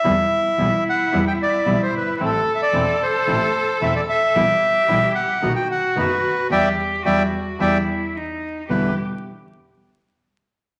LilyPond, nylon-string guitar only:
\new Staff \with { instrumentName = "Nylon-string guitar" } { \clef bass \time 4/4 \key e \minor \tempo 4 = 111 <b, e g b e'>8 r8 <b, e g b e'>8 r8 <b, e g b e'>8 r8 <b, e g b e'>8 r8 | <e a c' e'>8 r8 <e a c' e'>8 r8 <e a c' e'>8 r8 <e a c' e'>8 r8 | <b, e g b e'>8 r8 <b, e g b e'>8 r8 <b, dis a b fis'>8 r8 <b, dis a b fis'>8 r8 | <e g b>8 r8 <e g b>8 r8 <e g b>8 r4. |
<e, b, d g b e'>8 r2. r8 | }